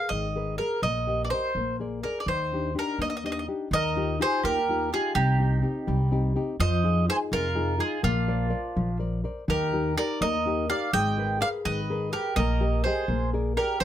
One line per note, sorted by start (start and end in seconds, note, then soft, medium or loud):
0.00 0.26 G#4 soft
0.00 0.26 A#4 soft
0.00 0.26 B4 soft
0.09 0.57 G#1 medium
0.09 0.55 D#5 medium
0.13 0.59 D#3 medium
0.36 0.58 G#4 soft
0.36 0.59 A#4 soft
0.36 0.59 B4 soft
0.58 0.78 G#4 soft
0.58 0.83 A#4 medium
0.58 0.79 A#4 soft
0.58 0.79 B4 soft
0.82 1.29 A#1 medium
0.82 1.30 A#3 medium
0.82 1.21 D#5 medium
1.07 1.31 G4 soft
1.07 1.31 A#4 soft
1.07 1.32 D#5 soft
1.25 1.30 D5 soft
1.30 1.51 G4 soft
1.30 1.51 A#4 soft
1.30 1.75 C5 medium
1.30 1.51 D#5 soft
1.55 2.02 A#1 medium
1.55 2.03 A#3 medium
1.80 2.03 G#4 soft
1.80 2.04 A#4 soft
1.80 2.04 D5 soft
2.03 2.23 G#4 soft
2.03 2.20 A#4 medium
2.03 2.23 A#4 soft
2.03 2.23 D5 soft
2.20 2.27 D5 soft
2.26 2.74 D#2 medium
2.26 2.74 D#3 medium
2.26 2.73 C5 medium
2.52 2.73 D4 soft
2.52 2.74 D#4 soft
2.52 2.74 G4 soft
2.75 3.14 D4 soft
2.75 3.14 D#4 soft
2.75 3.14 G4 soft
2.79 3.00 A#4 medium
2.99 3.46 D#2 medium
2.99 3.47 A#3 soft
2.99 3.08 D#5 medium
3.10 3.16 D#5 medium
3.17 3.23 D#5 medium
3.24 3.47 D4 soft
3.24 3.47 D#4 soft
3.24 3.47 G4 soft
3.24 3.31 D#5 soft
3.32 3.38 D#5 medium
3.39 3.45 D#5 soft
3.48 3.67 D4 soft
3.48 3.67 D#4 soft
3.48 3.67 G4 soft
3.71 4.18 D#2 medium
3.71 4.19 D#3 medium
3.71 4.18 D#5 loud
3.75 4.19 A#4 medium
3.96 4.18 D#4 soft
3.96 4.19 F4 soft
3.96 4.19 G4 medium
4.20 4.59 D#4 soft
4.20 4.59 F4 soft
4.20 4.59 G4 soft
4.20 4.43 G#4 medium
4.20 4.44 C5 medium
4.43 4.91 D#2 medium
4.43 4.91 A#3 medium
4.43 4.89 G4 medium
4.43 4.89 A#4 medium
4.69 4.92 D#4 soft
4.69 4.92 F4 soft
4.69 4.93 G4 medium
4.93 5.12 D#4 soft
4.93 5.15 F4 medium
4.93 5.12 F4 soft
4.93 5.13 G4 soft
4.93 5.15 G#4 medium
5.15 5.62 C2 medium
5.15 5.63 C3 medium
5.15 6.08 D#4 medium
5.15 6.08 G4 medium
5.39 5.61 C4 soft
5.39 5.61 D#4 soft
5.39 5.62 G4 medium
5.62 6.01 C4 soft
5.62 6.02 D#4 soft
5.62 6.02 G4 medium
5.87 6.35 C2 medium
5.87 6.34 G3 medium
6.11 6.34 C4 soft
6.11 6.35 D#4 soft
6.11 6.35 G4 medium
6.36 6.55 C4 soft
6.36 6.55 D#4 soft
6.36 6.55 G4 medium
6.60 7.06 F2 loud
6.60 7.07 F3 medium
6.60 7.06 C5 medium
6.60 7.05 D#5 loud
6.84 7.07 D#4 soft
6.84 7.07 F4 soft
6.84 7.08 G#4 medium
7.08 7.47 D#4 soft
7.08 7.47 F4 soft
7.08 7.47 G#4 medium
7.08 7.18 G#4 medium
7.08 7.16 C5 loud
7.32 7.78 F2 medium
7.32 7.79 C3 medium
7.32 7.78 F4 medium
7.32 7.82 A#4 medium
7.55 7.77 D#4 medium
7.55 7.78 F4 soft
7.55 7.78 G#4 soft
7.78 7.98 D#4 medium
7.78 7.98 F4 soft
7.78 8.03 F4 medium
7.78 7.99 G#4 medium
7.78 8.02 G#4 medium
8.03 8.51 A#1 loud
8.03 8.50 A#3 medium
8.03 8.98 D4 medium
8.03 8.97 F4 medium
8.28 8.49 A#4 soft
8.28 8.49 C5 soft
8.28 8.49 D5 soft
8.50 8.89 A#4 medium
8.50 8.90 C5 soft
8.50 8.90 D5 soft
8.76 9.24 A#1 medium
8.76 9.23 F3 medium
8.99 9.23 A#4 soft
8.99 9.23 C5 soft
8.99 9.23 D5 soft
9.24 9.44 A#4 soft
9.24 9.44 C5 soft
9.24 9.44 D5 medium
9.48 9.95 D#2 medium
9.48 9.95 D#3 medium
9.48 9.94 G4 medium
9.48 9.94 A#4 medium
9.73 9.96 D#4 soft
9.73 9.96 G4 soft
9.73 9.96 A#4 soft
9.97 10.36 D#4 soft
9.97 10.36 G4 soft
9.97 10.36 A#4 soft
9.97 10.20 A#4 medium
9.97 10.20 D5 medium
10.21 10.68 D#2 medium
10.21 10.68 A#3 medium
10.21 10.67 A#4 medium
10.21 10.66 D#5 medium
10.46 10.69 D#4 soft
10.46 10.68 G4 soft
10.46 10.69 A#4 soft
10.70 10.89 D#4 soft
10.70 10.89 G4 soft
10.70 10.89 A#4 medium
10.70 10.92 D5 medium
10.70 10.92 F5 medium
10.93 11.40 G#1 medium
10.93 11.40 G#3 medium
10.93 11.38 D#5 medium
10.93 11.38 G5 loud
11.18 11.40 G#4 soft
11.18 11.40 A#4 soft
11.18 11.41 B4 medium
11.41 11.80 G#4 soft
11.41 11.80 A#4 soft
11.41 11.80 B4 medium
11.41 11.47 D5 medium
11.41 11.48 F5 medium
11.65 12.12 G#1 medium
11.65 12.12 D#3 medium
11.65 12.10 B4 medium
11.65 12.10 D#5 medium
11.90 12.11 G#4 soft
11.90 12.11 A#4 medium
11.90 12.12 B4 medium
12.12 12.35 G4 medium
12.12 12.32 G#4 medium
12.12 12.32 A#4 soft
12.12 12.35 A#4 medium
12.12 12.32 B4 medium
12.36 12.84 A#1 loud
12.36 12.83 A#3 medium
12.36 12.83 A#4 medium
12.36 12.81 D#5 medium
12.61 12.85 G4 soft
12.61 12.85 A#4 soft
12.61 12.85 D#5 medium
12.84 13.05 G4 soft
12.84 13.30 G#4 medium
12.84 13.05 A#4 soft
12.84 13.29 C5 medium
12.84 13.05 D#5 medium
13.08 13.55 A#1 medium
13.08 13.56 A#3 medium
13.33 13.55 G#4 medium
13.33 13.56 A#4 soft
13.33 13.56 D5 medium
13.57 13.80 G4 medium
13.57 13.76 G#4 soft
13.57 13.76 A#4 soft
13.57 13.80 A#4 medium
13.57 13.76 D5 medium
13.80 13.84 D#2 medium
13.80 13.84 D#3 medium
13.80 13.84 C5 medium